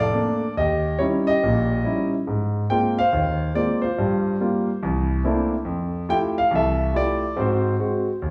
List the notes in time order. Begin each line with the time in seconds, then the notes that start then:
0.00 A4 D5
0.13 A3 A#3 D4
0.57 D#2 G4 D#5
0.99 G3 C#4 D#4 E4 C#5
1.27 G4 D#5
1.43 A#1 A#2
1.84 G3 C#4 D#4 E4
2.27 G#2
2.70 G#3 A#3 C4 F4 G5
2.99 C5 F5
3.12 D#2 D#3
3.54 G#3 A#3 C4 F4 D5
3.82 F4 C5
3.98 G2 G3
4.40 G3 A#3 F4
4.83 C2 E3
5.24 A3 A#3 C4 D4 E4
5.65 F2
6.09 A3 E4 F4 G4 G5
6.38 F5
6.50 C2 E3
6.55 A4 E5
6.94 A3 E4 F4 G4 D5
7.36 G#2 C4 F#4 C5
7.79 G#3 C4 F#4
8.22 D#2